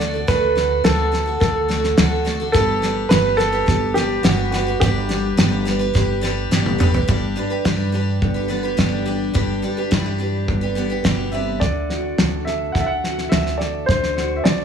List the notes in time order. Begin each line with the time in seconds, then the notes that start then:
Already playing: D2 D5
0.00 A3 D4 F#4 A4, snare
0.13 D4 F#4 A4
0.27 D2 D3 A3 D4 F#4 A4 B4, kick, snare
0.55 A3 D4 F#4 A4, snare
0.84 D2 D3 A3 D4 F#4 A4, snare
1.12 A3 D4 F#4 A4, snare
1.26 D4 F#4 A4
1.40 D2 A3 D4 F#4 A4, kick, snare
1.68 A3 D4 F#4 A4, snare
1.84 snare
1.97 D2 D3 A3 D4 F#4 A4, snare
2.25 A3 D4 F#4 A4, snare
2.40 D4 F#4 A4
2.52 G1 G3 D4 G4 A4 B4, kick, snare
2.82 G3 D4 G4 B4, snare
3.09 G1 G3 D4 G4 B4, snare
3.37 G3 D4 G4 A4 B4, snare
3.52 D4 G4 B4
3.66 G1 G3 D4 G4 B4, kick, snare
3.94 G3 D4 G4 B4, snare
4.23 G1 G3 D4 F#4 G4 B4, snare
4.51 G3 D4 F#4 G4 B4, snare
4.67 D4 G4 B4
4.80 G1 G3 D4 G4 B4, kick, snare
5.09 G3 D4 G4 B4, snare
5.37 G1 G3 D4 G4 B4, snare
5.65 G3 D4 G4 B4, snare
5.79 D4 G4 B4
5.94 G1 G3 D4 G4 B4, kick, snare
6.21 G3 D4 G4 B4, snare
6.51 G1 G3 D4 G4 B4, snare
6.66 high tom
6.78 G3 D4 G4 B4, mid tom
6.94 D4 G4 B4, floor tom
7.08 G1 G2 G3 D4 G4 B4, kick
7.36 G3 D4 G4 B4
7.50 D4 G4 B4
7.65 G2 G3 D4 G4 B4, kick, snare
7.92 G3 D4 G4 B4
8.22 G1 D3, kick
8.34 D4 G4 B4
8.48 G3 B3 D4 G4 B4
8.63 D4 G4 B4
8.77 G1 G3 D4 G4 B4, kick, snare
9.05 G3 D4 G4 B4
9.34 G1 G2 G3 D4 G4 B4, kick
9.62 G3 D4 G4 B4
9.77 D4 G4 B4
9.91 G2 G3 D4 E4 G4 B4, kick, snare
10.06 G4
10.18 G3 D4 G4 B4
10.48 G1 D3, kick
10.61 D4 G4 B4
10.75 G3 B3 D4 G4 B4
10.90 D4 G4 B4
11.04 G1 B2 G3 D4 G4 B4, kick, snare
11.32 C3 G3 D4 G4 B4 E5
11.60 D2 D3 D5, kick, snare
11.90 F#4, snare
12.18 D2 A4, snare
12.45 A4 E5, snare
12.72 D2 A4 F#5, kick, snare
12.80 E5
12.86 F#5
13.04 F#4, snare
13.18 snare
13.29 D2 A4 E5, snare
13.46 snare
13.58 A4 D5, snare
13.86 D2 D3 C5, kick, snare
14.03 snare
14.17 F#4, snare
14.36 E5
14.44 D2 A4 D5, snare